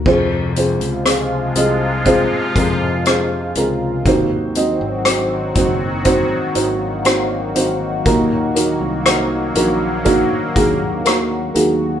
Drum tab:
CC |x---------------|----------------|----------------|
HH |--xxx-x-x-x-x-x-|x-x-x-x-x-x-x-x-|x-x-x-x-x-x-x-x-|
SD |----r-------r---|----r-------r---|----r-------r---|
BD |o-------o-o-----|o-----o-o-------|o-------o-o-----|